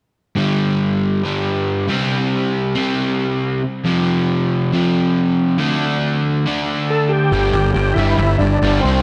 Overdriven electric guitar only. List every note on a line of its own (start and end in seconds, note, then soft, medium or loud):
0.35 1.22 G2 medium
0.35 1.23 D3 medium
0.35 1.25 G3 medium
1.23 1.88 G2 medium
1.23 1.88 D3 medium
1.23 1.89 G3 medium
1.88 2.75 C3 medium
1.88 2.75 G3 medium
1.88 2.75 C4 medium
2.75 3.63 C3 medium
2.75 3.62 G3 medium
2.75 3.62 C4 medium
3.85 4.71 F2 medium
3.85 4.71 C3 medium
3.85 4.72 F3 medium
4.72 5.58 F2 medium
4.72 5.58 C3 medium
4.72 5.59 F3 medium
5.59 6.45 D3 medium
5.59 6.45 A3 medium
5.59 6.46 D4 medium
6.46 7.31 D3 medium
6.46 7.32 A3 medium
6.46 7.32 D4 medium
7.33 7.53 G2 medium
7.33 7.53 D3 medium
7.33 7.54 G3 medium
7.54 7.74 G2 medium
7.54 7.74 D3 medium
7.76 7.95 G2 medium
7.76 7.96 D3 medium
7.98 8.18 G2 medium
7.98 8.18 D3 medium
7.98 8.19 G3 medium
8.19 8.39 G2 medium
8.19 8.39 D3 medium
8.41 8.61 G2 medium
8.41 8.61 D3 medium
8.63 8.83 G2 medium
8.63 8.84 D3 medium
8.63 8.84 G3 loud
8.84 9.02 C3 medium
8.84 9.02 G3 medium
8.84 9.02 C4 medium